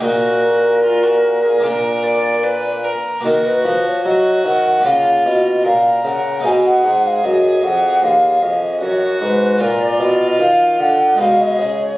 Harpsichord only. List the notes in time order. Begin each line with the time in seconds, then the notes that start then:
Already playing: A#3
0.00 A#2 D#4 F#4
1.59 A#3 D4 F4
1.63 A#2
3.20 A#3 F#4
3.25 D#3
3.65 F3
4.05 F#3
4.45 D#3
4.81 A#3 C#4 F4
4.85 C#3
5.25 B2
5.65 A#2
6.05 C#3
6.40 B3 D#4 G#4
6.44 B2
6.84 G#2
7.24 F#2
7.63 F2
8.02 D#2
8.42 F2
8.81 F#2
9.21 G#2
9.58 A#2 F4 A#4
10.00 B2
10.40 D#3
10.79 D3
11.15 G#3 D#4 G#4
11.19 B2
11.59 C#3